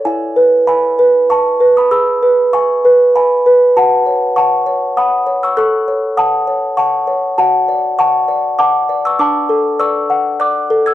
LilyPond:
\new Staff \with { instrumentName = "Music box" } { \time 3/4 \key e \major \tempo 4 = 99 << { <e'' gis''>4 <gis'' b''>4 <a'' cis'''>8. <b'' dis'''>16 | <b'' e'''>4 <gis'' cis'''>4 <gis'' b''>4 | <fis'' a''>4 <a'' cis'''>4 <b'' dis'''>8. <cis''' e'''>16 | <cis''' fis'''>4 <a'' dis'''>4 <a'' cis'''>4 |
\key d \lydian <fis'' a''>4 <a'' cis'''>4 <a'' d'''>8. <cis''' e'''>16 | <a'' d'''>4 <cis''' e'''>4 <d''' fis'''>8. <e''' gis'''>16 | } \\ { e'8 b'8 e''8 b'8 e''8 b'8 | gis'8 b'8 e''8 b'8 e''8 b'8 | fis'8 cis''8 fis''8 cis''8 fis''8 cis''8 | a'8 cis''8 fis''8 cis''8 fis''8 cis''8 |
fis'8 d''8 fis''8 d''8 fis''8 d''8 | d'8 a'8 d''8 fis''8 d''8 a'8 | } >> }